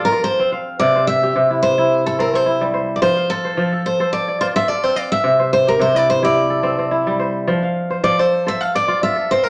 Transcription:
Already playing: F3 F4 A4 C5 D5
0.05 A#4
0.12 F4
0.24 C5
0.39 C4
0.52 F5
0.79 C3 D5
0.95 C5
1.07 E5
1.23 G4
1.36 C3
1.51 E4
1.62 C5
1.78 E4
2.06 A4
2.19 C4 A4 A#4
2.33 C4 C5
2.46 E4
2.61 G3
2.74 C5
2.96 D5
3.02 F3 C5
3.17 F5
3.30 A4
3.45 C5
3.57 F3
3.72 A4
3.86 C5
4.00 A4 C5
4.13 D5
4.28 D5
4.41 F4 C5 D5
4.56 F4 E5
4.68 A4 D5
4.83 C4 C5
4.96 D5 F5
5.12 E5
5.24 C3
5.39 C5
5.53 C5
5.67 G4 A#4
5.79 C3 C5
5.95 E4 D5
6.10 C5
6.23 E4 G4 D5
6.50 A4
6.63 C4 A4
6.79 C4
6.91 E4
7.07 G3
7.20 C5
7.48 F3
7.63 F5
7.90 C5
8.04 F3 D5
8.19 A4 C5
8.47 A4 C5 E5
8.61 F5
8.75 D5
8.88 F4 D5
9.03 F4 E5
9.16 A4
9.31 C4 C5
9.43 A#4 F5

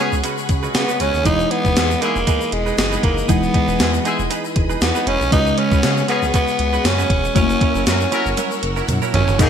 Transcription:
Already playing: C#3 G#3 B3 C#4 F#4 G#4 F#5 B5 C#6
0.00 G#3 B3 C#4 F#4 G#4 B4
0.12 C#2, muted clean electric guitar stroke, shaker
0.23 G#3 C#4 F#4 B4, closed hi-hat, shaker
0.38 muted clean electric guitar stroke, shaker
0.49 C#2, muted clean electric guitar stroke, kick, closed hi-hat, shaker
0.63 G#3 C#4 F#4 B4, shaker
0.74 C#3 B3, muted clean electric guitar stroke, snare, closed hi-hat, shaker
0.88 G#3 C#4 F#4 B4, shaker
1.00 C#2 G#3 C#4 F#4 B4, closed hi-hat, shaker
1.14 D#2, muted clean electric guitar stroke, shaker
1.24 E1 E3 G#3 B3 D#4 E4 G#4 B4 D#5 B5 D#6, kick, closed hi-hat, shaker
1.39 muted clean electric guitar stroke, shaker
1.50 B3 D#4 G#4 B4, closed hi-hat
1.64 E1 B3 D#4 G#4 B4, kick, shaker
1.76 E2 G#3 E4 G#4, snare, closed hi-hat, shaker
1.90 muted clean electric guitar stroke, shaker
2.01 G#3 A#3 B3 D#4 E4 G#4 B4, closed hi-hat, shaker
2.15 E1, muted clean electric guitar stroke, shaker
2.27 B3 D#4 G#4 B4, kick, closed hi-hat, shaker
2.41 muted clean electric guitar stroke, shaker
2.52 E1 G#3, muted clean electric guitar stroke, closed hi-hat
2.66 B3 D#4 G#4 B4, shaker
2.78 F#1 G#3, muted clean electric guitar stroke, snare, closed hi-hat, shaker
2.91 B3 D#4 G#4 B4, shaker
3.03 F#1 A#3 B3 D#4 G#4 B4, kick, closed hi-hat
3.17 muted clean electric guitar stroke, shaker
3.28 E1 E3 G#3 B3 D#4 E4 G#4 B4, kick, closed hi-hat, shaker
3.42 muted clean electric guitar stroke, shaker
3.54 B3 D#4 G#4 B4, kick, closed hi-hat
3.68 E1 B3 D#4 G#4 B4, shaker
3.80 E2 G#3 E4 G#4, snare, closed hi-hat, shaker
3.93 muted clean electric guitar stroke, shaker
4.05 G#3 B3 D#4 E4 G#4 B4, closed hi-hat, shaker
4.19 E1, muted clean electric guitar stroke, shaker
4.30 B3 D#4 G#4 B4, closed hi-hat, shaker
4.44 muted clean electric guitar stroke, shaker
4.56 E1, muted clean electric guitar stroke, kick, closed hi-hat
4.70 B3 D#4 G#4 B4, shaker
4.81 E2 B3, muted clean electric guitar stroke, snare, closed hi-hat, shaker
4.95 B3 D#4 G#4 B4, shaker
5.07 E1 B3 C#4 D#4 G#4 B4, closed hi-hat
5.21 B1, muted clean electric guitar stroke, shaker
5.31 C#2 C#3 G#3 C#4 D#4 F#4 G#4 B4 F#5 B5 C#6, kick, closed hi-hat, shaker
5.46 muted clean electric guitar stroke, shaker
5.57 G#3 C#4 F#4 B4, closed hi-hat
5.71 C#2 G#3 C#4 F#4 B4, kick, shaker
5.83 C#3 B3 C#4 G#4, snare, closed hi-hat, shaker
5.97 muted clean electric guitar stroke, shaker
6.08 G#3 B3 C#4 F#4 G#4 B4, closed hi-hat, shaker
6.22 C#2, muted clean electric guitar stroke, shaker
6.34 G#3 B3 C#4 F#4 B4, kick, closed hi-hat, shaker
6.48 muted clean electric guitar stroke, shaker
6.59 C#2, muted clean electric guitar stroke, closed hi-hat
6.73 G#3 C#4 F#4 B4, shaker
6.85 F#2 C#4, muted clean electric guitar stroke, snare, closed hi-hat, shaker
6.98 G#3 C#4 F#4 B4, shaker
7.10 E1, muted clean electric guitar stroke, kick, closed hi-hat
7.24 muted clean electric guitar stroke, shaker
7.34 F#1 F#3 A3 C#4 E4 F#4 A#4 C#5 F#5 E6, kick, closed hi-hat, shaker
7.41 A#3
7.49 muted clean electric guitar stroke, shaker
7.61 F#3 C#4 E4 A#4, kick, closed hi-hat
7.75 F#1 F#3 C#4 E4 A#4, shaker
7.86 F#2 C#4 E4 F#4 A#4, snare, closed hi-hat, shaker
8.00 muted clean electric guitar stroke, shaker
8.12 F#3 C#4 E4 F#4 A#4, closed hi-hat, shaker
8.26 F#1, muted clean electric guitar stroke, shaker
8.37 F#3 C#4 E4 A#4, closed hi-hat, high tom, shaker
8.51 muted clean electric guitar stroke, shaker
8.63 F#1, muted clean electric guitar stroke, closed hi-hat
8.76 F#3 C#4 E4 A#4, shaker
8.88 F#2, muted clean electric guitar stroke, closed hi-hat, mid tom, shaker
9.02 F#3 C#4 E4 A#4, shaker
9.13 G#1 F#3 C#4 E4 A#4, closed hi-hat, floor tom
9.27 F#1, muted clean electric guitar stroke, floor tom, shaker
9.38 G#1 G#2 B2 G#3 A#3 B3 D#4 G#4 A#4 D#5 G#5 A#5 D#6, kick, closed hi-hat, crash, shaker

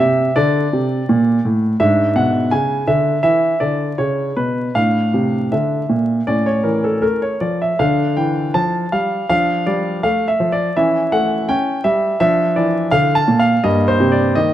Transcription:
Already playing: D4
0.00 C3 E5
0.36 D3 D5
0.73 C3
1.09 A#2
1.45 A2
1.80 G#2 D4 E5
2.16 B2 F#5
2.51 C#3 G#5
2.87 D3 E5
3.23 E3 E5
3.60 D3 D5
3.98 C#3 C#5
4.36 B2 B4
4.75 A2 D4 F5
5.14 C3
5.52 D3 E5
5.89 A#2
6.27 A2 C#4 D5
6.46 C#5
6.64 E3 A#4
6.84 A4
7.02 A3 A#4
7.22 C#5
7.41 F3 D5
7.62 E5
7.79 D3 D4 F5
8.17 E3 G5
8.54 F3 A5
8.92 G3 F5
9.29 F3 D4 F5
9.66 G3 D5
10.03 A3 F5
10.28 E5
10.40 F3
10.52 D5
10.77 E3 C#4 E5
11.12 A3 F#5
11.49 C#4 G5
11.84 G3 E5
12.20 F3 D4 E5
12.56 E3 D5
12.91 D3 F5
13.15 A5
13.28 A#2
13.39 F5
13.64 G2 A#3 D#5
13.88 C5
14.00 C3
14.12 D5
14.35 D#3 D#5

